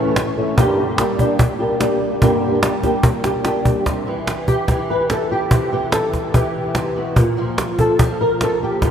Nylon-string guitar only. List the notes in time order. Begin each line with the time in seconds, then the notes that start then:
Already playing: A2 C#3 E3 A3 C#4 A4
0.16 muted nylon-string guitar stroke
0.37 E3 A3 C#4 A4
0.57 G2 D3 G3 A#3 D4 G4
0.98 G3 A#3 D4 G4
1.18 G3 A#3 D4 G4
1.39 muted nylon-string guitar stroke
1.59 G3 A#3 D4 G4
1.80 G3 A#3 D4 G4
2.21 G2 D3 G3 A#3 D4 G4
2.62 G3 A#3 D4 G4
2.83 G3 A#3 D4 G4
3.04 muted nylon-string guitar stroke
3.24 G3 A#3 D4 G4
3.45 G3 A#3 D4 G4
3.86 C3
4.07 E3
4.48 G4
4.68 E3
4.90 B4
5.10 A4
5.31 G4
5.51 C3
5.72 E3 G4
5.92 A4
6.34 E3 G4
6.75 C3
6.96 B2
7.17 A#2
7.37 F3
7.79 A4
7.99 F3
8.21 A#4
8.43 A4
8.63 G4
8.82 A#2 F4